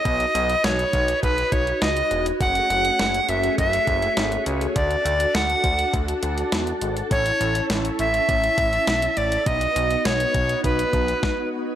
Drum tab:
HH |xxxxxxxxxxxxxxxx|xxxxxxxxxxxxxxxx|xxxxxxxxxxxxxxxx|xxxxxxxxxxxxxxxx|
SD |----o-------o---|----o-------o---|----o-------o---|----o-------o---|
BD |o-----o-o-o-----|o-------o-o-----|o-----o-o-------|o-------o-o-----|

HH |xxxxxxxxxxxx----|
SD |----o-------o---|
BD |o-----o-o-o-o---|